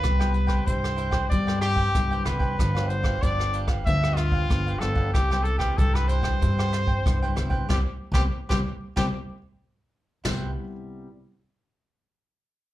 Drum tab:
CC |----------------|----------------|----------------|----------------|
HH |xxx-xxxxx-x-xxx-|xxx-xxxxx-x-xxx-|xxx-xxxxx-x-xxx-|----------------|
SD |rr-r-r-r-rr-r-r-|rr-r-r-r-rr-r-r-|rr-r-r-r-rr-r-r-|o--o-o--o-------|
FT |----------------|----------------|----------------|----------------|
BD |o--oo--oo--oo--o|o--oo--oo--oo--o|o--oo--oo--oo--o|o--o-o--o-------|

CC |x---------------|
HH |----------------|
SD |o---------------|
FT |o---------------|
BD |----------------|